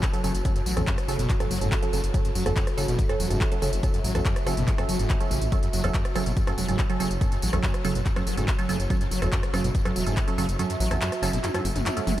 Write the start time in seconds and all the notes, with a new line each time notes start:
Already playing: F#3 C#4 F#4 A4 C#5
0.03 F#1, kick, clap, closed hi-hat, tambourine
0.13 F#3 C#4 A4, closed hi-hat, tambourine
0.24 F#1 C#3 F#3 C#4 A4, open hi-hat, tambourine
0.34 F#1, closed hi-hat, tambourine
0.45 F#2 F#3 C#4 A4, kick, closed hi-hat, tambourine
0.56 F#2, closed hi-hat, tambourine
0.66 A1 F#3, open hi-hat, tambourine
0.77 A1 E2 F#3 C#4 A4, cross-stick, closed hi-hat
0.87 F#2, kick, clap, closed hi-hat, tambourine
0.98 cross-stick, closed hi-hat, tambourine
1.08 F#1 C#3 F#3 C#4 A4, open hi-hat, tambourine
1.19 F#1 B2, closed hi-hat, tambourine
1.30 F#2, kick, clap, closed hi-hat
1.40 F#2 F#3 C#4 A4, cross-stick, closed hi-hat, tambourine
1.51 F#1 F#3, open hi-hat, tambourine
1.61 F#1 G#2 F#3 C#4 A4, closed hi-hat, tambourine
1.72 F#1, kick, clap, closed hi-hat, tambourine
1.82 F#3 C#4 A4, closed hi-hat, tambourine
1.93 F#1 C#3 F#3 C#4 A4, open hi-hat, tambourine
2.03 F#1, closed hi-hat, tambourine
2.14 F#2 F#3 C#4 A4, kick, closed hi-hat, tambourine
2.25 F#2, closed hi-hat, tambourine
2.35 F#1 F#3, open hi-hat, tambourine
2.46 F#1 E2 F#3 C#4 A4, cross-stick, closed hi-hat
2.56 F#2, kick, clap, closed hi-hat, tambourine
2.62 E5
2.67 cross-stick, closed hi-hat, tambourine
2.77 F#1 C#3 F#3 C#4 A4, open hi-hat, tambourine
2.88 F#1 B2, closed hi-hat, tambourine
2.99 F#2, kick, closed hi-hat, tambourine
3.09 F#2 F#3 C#4 A4, cross-stick, closed hi-hat, tambourine
3.20 E1 F#3, open hi-hat, tambourine
3.30 F#1 G#2 F#3 C#4 A4, closed hi-hat, tambourine
3.41 F#1, kick, clap, closed hi-hat
3.51 F#3 C#4 A4, closed hi-hat, tambourine
3.62 F#1 C#3 F#3 C#4 A4, open hi-hat, tambourine
3.72 F#1, closed hi-hat, tambourine
3.83 F#2 F#3 C#4 A4, kick, closed hi-hat, tambourine
3.94 F#2, closed hi-hat, tambourine
4.04 A1 F#3, open hi-hat, tambourine
4.15 A1 E2 F#3 C#4 A4, cross-stick, closed hi-hat, tambourine
4.25 F#2, kick, clap, closed hi-hat, tambourine
4.36 cross-stick, closed hi-hat, tambourine
4.46 F#1 C#3 F#3 C#4 A4, cross-stick, open hi-hat, tambourine
4.57 F#1 B2, closed hi-hat, tambourine
4.68 F#2, kick, clap, closed hi-hat, tambourine
4.78 F#2 F#3 C#4 A4, cross-stick, closed hi-hat, tambourine
4.89 F#1 F#3, open hi-hat, tambourine
4.99 F#1 G#2, closed hi-hat
5.10 F#1, kick, clap, closed hi-hat, tambourine
5.20 F#3 C#4 A4, closed hi-hat, tambourine
5.31 A1 C#3, open hi-hat, tambourine
5.42 A1, closed hi-hat, tambourine
5.52 F#2 F#3 C#4 A4, kick, closed hi-hat, tambourine
5.63 F#2, closed hi-hat, tambourine
5.73 F#1 F#3, open hi-hat, tambourine
5.84 F#1 E2 F#3 C#4 A4, cross-stick, closed hi-hat, tambourine
5.94 F#2, kick, clap, closed hi-hat, tambourine
6.00 C#5
6.05 cross-stick, closed hi-hat, tambourine
6.15 F#1 C#3 F#3 C#4 A4, cross-stick, open hi-hat, tambourine
6.26 F#1 B2, closed hi-hat, tambourine
6.37 F#2, kick, closed hi-hat, tambourine
6.47 F#2 F#3 C#4 A4, cross-stick, closed hi-hat, tambourine
6.58 E1 F#3, open hi-hat, tambourine
6.68 F#1 G#2 F#3 C#4 A4, closed hi-hat, tambourine
6.79 F#1, kick, clap, closed hi-hat, tambourine
6.90 F#3 C#4 A4, closed hi-hat, tambourine
7.00 F#1 C#3 F#3 C#4 A4, open hi-hat, tambourine
7.11 F#1, closed hi-hat, tambourine
7.21 F#2 F#3 C#4 A4, kick, closed hi-hat, tambourine
7.32 F#2, closed hi-hat, tambourine
7.42 A1 F#3, open hi-hat, tambourine
7.53 A1 E2 F#3 C#4 A4, cross-stick, closed hi-hat
7.63 F#2, kick, clap, closed hi-hat, tambourine
7.74 cross-stick, closed hi-hat, tambourine
7.85 F#1 C#3 F#3 C#4 A4, open hi-hat, tambourine
7.95 F#1 B2, closed hi-hat, tambourine
8.06 F#2, kick, clap, closed hi-hat, tambourine
8.16 F#2 F#3 C#4 A4, cross-stick, closed hi-hat, tambourine
8.27 F#1 F#3, open hi-hat, tambourine
8.37 F#1 G#2 F#3 C#4 A4, closed hi-hat, tambourine
8.48 F#1, kick, clap, closed hi-hat, tambourine
8.58 F#3 C#4 A4, closed hi-hat, tambourine
8.69 F#1 C#3 F#3 C#4 A4, open hi-hat, tambourine
8.80 F#1, closed hi-hat, tambourine
8.90 F#2 F#3 C#4 A4, kick, closed hi-hat, tambourine
9.01 F#2, closed hi-hat, tambourine
9.11 F#1 F#3, open hi-hat, tambourine
9.22 F#1 E2 F#3 C#4 A4, cross-stick, closed hi-hat
9.32 F#2, kick, clap, closed hi-hat, tambourine
9.38 E5
9.43 cross-stick, closed hi-hat, tambourine
9.53 F#1 C#3 F#3 C#4 A4, cross-stick, open hi-hat, tambourine
9.64 F#1 B2, closed hi-hat, tambourine
9.75 F#2, kick, closed hi-hat, tambourine
9.85 F#2 F#3 C#4 A4, cross-stick, closed hi-hat, tambourine
9.96 E1 F#3, open hi-hat, tambourine
10.06 F#1 G#2 F#3 C#4 A4, closed hi-hat, tambourine
10.17 F#1, kick, clap, closed hi-hat, tambourine
10.28 F#3 C#4 A4, closed hi-hat, tambourine
10.38 F#1 C#3 F#3 C#4 A4, open hi-hat, tambourine
10.49 F#1, closed hi-hat, tambourine
10.59 F#2 F#3 C#4 A4, closed hi-hat, tambourine
10.70 F#2, closed hi-hat, tambourine
10.80 A1 F#3, open hi-hat, tambourine
10.91 A1 E2 F#3 C#4 A4, cross-stick, closed hi-hat, tambourine
11.01 F#2, clap, closed hi-hat, tambourine
11.12 cross-stick, closed hi-hat, tambourine
11.22 F#1 C#3 F#3 C#4 A4, open hi-hat, tambourine
11.33 F#1 B2, closed hi-hat, tambourine
11.44 F#2, clap, closed hi-hat, high tom, tambourine
11.54 F#2 F#3 C#4 A4, cross-stick, closed hi-hat, high tom, tambourine
11.65 F#1 F#2, open hi-hat, tambourine
11.75 F#1 F#2, closed hi-hat, mid tom, tambourine
11.86 F#2, clap, closed hi-hat, mid tom, tambourine
11.97 F#2 F#3 C#4 A4, closed hi-hat, tambourine
12.07 F#1 F#3, mid tom, open hi-hat, tambourine